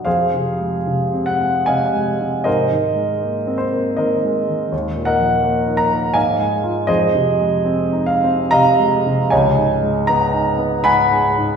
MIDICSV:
0, 0, Header, 1, 2, 480
1, 0, Start_track
1, 0, Tempo, 814111
1, 35, Time_signature, 3, 2, 24, 8
1, 995, Tempo, 768246
1, 2435, Tempo, 720288
1, 3875, Tempo, 750939
1, 4835, Tempo, 873362
1, 5315, Tempo, 776197
1, 7192, End_track
2, 0, Start_track
2, 0, Title_t, "Grand piano"
2, 0, Program_c, 0, 0
2, 0, Control_c, 0, 64, 127
2, 27, Note_on_c, 0, 77, 65
2, 31, Note_on_c, 0, 72, 51
2, 34, Note_on_c, 0, 68, 51
2, 38, Note_on_c, 0, 41, 40
2, 45, Control_c, 0, 64, 0
2, 157, Control_c, 0, 64, 127
2, 201, Note_on_c, 0, 48, 30
2, 354, Note_on_c, 0, 56, 31
2, 456, Note_off_c, 0, 48, 0
2, 515, Note_on_c, 0, 48, 35
2, 614, Note_off_c, 0, 56, 0
2, 672, Note_on_c, 0, 60, 35
2, 733, Note_off_c, 0, 72, 0
2, 734, Note_off_c, 0, 68, 0
2, 742, Note_on_c, 0, 78, 63
2, 755, Note_off_c, 0, 77, 0
2, 773, Note_off_c, 0, 48, 0
2, 833, Note_on_c, 0, 56, 36
2, 929, Note_off_c, 0, 60, 0
2, 979, Note_on_c, 0, 80, 67
2, 986, Note_off_c, 0, 78, 0
2, 986, Note_on_c, 0, 77, 51
2, 987, Note_on_c, 0, 75, 47
2, 991, Note_on_c, 0, 48, 32
2, 1091, Note_off_c, 0, 56, 0
2, 1156, Note_on_c, 0, 56, 35
2, 1255, Note_off_c, 0, 48, 0
2, 1322, Note_on_c, 0, 48, 34
2, 1416, Note_off_c, 0, 56, 0
2, 1452, Note_off_c, 0, 75, 0
2, 1452, Note_off_c, 0, 77, 0
2, 1458, Note_off_c, 0, 41, 0
2, 1466, Note_on_c, 0, 75, 65
2, 1473, Note_off_c, 0, 80, 0
2, 1473, Note_on_c, 0, 72, 53
2, 1475, Note_on_c, 0, 70, 52
2, 1479, Note_on_c, 0, 44, 43
2, 1482, Note_off_c, 0, 48, 0
2, 1492, Control_c, 0, 64, 0
2, 1604, Control_c, 0, 64, 127
2, 1637, Note_on_c, 0, 51, 33
2, 1784, Note_on_c, 0, 56, 32
2, 1889, Note_off_c, 0, 51, 0
2, 1946, Note_on_c, 0, 58, 37
2, 2042, Note_off_c, 0, 56, 0
2, 2109, Note_on_c, 0, 60, 39
2, 2163, Note_off_c, 0, 72, 0
2, 2164, Note_off_c, 0, 70, 0
2, 2176, Note_on_c, 0, 72, 59
2, 2185, Note_off_c, 0, 75, 0
2, 2205, Note_off_c, 0, 58, 0
2, 2269, Note_on_c, 0, 58, 36
2, 2368, Note_off_c, 0, 60, 0
2, 2419, Note_off_c, 0, 72, 0
2, 2419, Note_on_c, 0, 75, 57
2, 2426, Note_on_c, 0, 70, 48
2, 2428, Note_on_c, 0, 51, 34
2, 2428, Note_on_c, 0, 72, 43
2, 2534, Note_off_c, 0, 58, 0
2, 2604, Note_on_c, 0, 56, 36
2, 2698, Note_off_c, 0, 51, 0
2, 2768, Note_on_c, 0, 51, 35
2, 2863, Note_off_c, 0, 56, 0
2, 2894, Note_off_c, 0, 70, 0
2, 2895, Note_off_c, 0, 72, 0
2, 2897, Note_off_c, 0, 44, 0
2, 2917, Note_off_c, 0, 75, 0
2, 2920, Note_on_c, 0, 39, 45
2, 2926, Note_off_c, 0, 51, 0
2, 2935, Control_c, 0, 64, 0
2, 3014, Control_c, 0, 64, 127
2, 3078, Note_on_c, 0, 46, 36
2, 3142, Note_on_c, 0, 78, 68
2, 3149, Note_on_c, 0, 70, 51
2, 3150, Note_on_c, 0, 75, 50
2, 3231, Note_on_c, 0, 53, 33
2, 3331, Note_off_c, 0, 46, 0
2, 3394, Note_on_c, 0, 58, 40
2, 3489, Note_off_c, 0, 53, 0
2, 3557, Note_on_c, 0, 63, 38
2, 3604, Note_off_c, 0, 70, 0
2, 3605, Note_off_c, 0, 75, 0
2, 3621, Note_on_c, 0, 82, 76
2, 3627, Note_off_c, 0, 78, 0
2, 3651, Note_off_c, 0, 58, 0
2, 3714, Note_on_c, 0, 58, 36
2, 3811, Note_off_c, 0, 63, 0
2, 3845, Note_off_c, 0, 39, 0
2, 3863, Note_on_c, 0, 80, 76
2, 3867, Note_off_c, 0, 82, 0
2, 3867, Note_on_c, 0, 77, 50
2, 3870, Note_on_c, 0, 44, 45
2, 3870, Note_on_c, 0, 75, 50
2, 3874, Note_off_c, 0, 58, 0
2, 3885, Control_c, 0, 64, 0
2, 3996, Control_c, 0, 64, 127
2, 4028, Note_on_c, 0, 56, 39
2, 4185, Note_on_c, 0, 63, 38
2, 4186, Note_on_c, 0, 65, 42
2, 4279, Note_off_c, 0, 56, 0
2, 4314, Note_off_c, 0, 77, 0
2, 4315, Note_off_c, 0, 75, 0
2, 4327, Note_off_c, 0, 44, 0
2, 4328, Note_off_c, 0, 63, 0
2, 4328, Note_off_c, 0, 65, 0
2, 4334, Note_on_c, 0, 75, 76
2, 4338, Note_off_c, 0, 80, 0
2, 4341, Note_on_c, 0, 68, 55
2, 4341, Note_on_c, 0, 72, 57
2, 4343, Note_on_c, 0, 41, 47
2, 4352, Control_c, 0, 64, 0
2, 4453, Control_c, 0, 64, 127
2, 4512, Note_on_c, 0, 48, 39
2, 4672, Note_on_c, 0, 56, 36
2, 4770, Note_off_c, 0, 48, 0
2, 4832, Note_on_c, 0, 60, 43
2, 4925, Note_off_c, 0, 56, 0
2, 4984, Note_on_c, 0, 63, 41
2, 5046, Note_off_c, 0, 68, 0
2, 5046, Note_off_c, 0, 72, 0
2, 5060, Note_on_c, 0, 77, 73
2, 5065, Note_off_c, 0, 75, 0
2, 5084, Note_off_c, 0, 60, 0
2, 5156, Note_on_c, 0, 60, 42
2, 5249, Note_off_c, 0, 63, 0
2, 5303, Note_off_c, 0, 77, 0
2, 5303, Note_on_c, 0, 82, 91
2, 5309, Note_on_c, 0, 75, 69
2, 5312, Note_on_c, 0, 77, 68
2, 5313, Note_on_c, 0, 48, 40
2, 5420, Note_off_c, 0, 60, 0
2, 5481, Note_on_c, 0, 56, 43
2, 5581, Note_off_c, 0, 48, 0
2, 5648, Note_on_c, 0, 48, 41
2, 5737, Note_off_c, 0, 56, 0
2, 5774, Note_off_c, 0, 75, 0
2, 5776, Note_off_c, 0, 77, 0
2, 5777, Note_off_c, 0, 41, 0
2, 5795, Note_on_c, 0, 80, 71
2, 5796, Note_off_c, 0, 82, 0
2, 5803, Note_off_c, 0, 48, 0
2, 5803, Note_on_c, 0, 73, 58
2, 5804, Note_on_c, 0, 75, 57
2, 5806, Note_on_c, 0, 37, 58
2, 5810, Control_c, 0, 64, 0
2, 5893, Control_c, 0, 64, 127
2, 5961, Note_on_c, 0, 44, 40
2, 6118, Note_on_c, 0, 56, 40
2, 6211, Note_off_c, 0, 44, 0
2, 6248, Note_off_c, 0, 73, 0
2, 6248, Note_off_c, 0, 75, 0
2, 6268, Note_off_c, 0, 80, 0
2, 6270, Note_on_c, 0, 82, 86
2, 6281, Note_on_c, 0, 59, 47
2, 6367, Note_off_c, 0, 56, 0
2, 6432, Note_on_c, 0, 63, 45
2, 6529, Note_off_c, 0, 59, 0
2, 6588, Note_on_c, 0, 59, 46
2, 6689, Note_off_c, 0, 63, 0
2, 6743, Note_on_c, 0, 83, 87
2, 6748, Note_on_c, 0, 78, 69
2, 6749, Note_on_c, 0, 80, 64
2, 6752, Note_off_c, 0, 82, 0
2, 6756, Note_on_c, 0, 44, 41
2, 6850, Note_off_c, 0, 59, 0
2, 6917, Note_on_c, 0, 56, 44
2, 7013, Note_off_c, 0, 44, 0
2, 7078, Note_on_c, 0, 44, 43
2, 7170, Note_off_c, 0, 56, 0
2, 7192, Note_off_c, 0, 37, 0
2, 7192, Note_off_c, 0, 44, 0
2, 7192, Note_off_c, 0, 78, 0
2, 7192, Note_off_c, 0, 80, 0
2, 7192, Note_off_c, 0, 83, 0
2, 7192, End_track
0, 0, End_of_file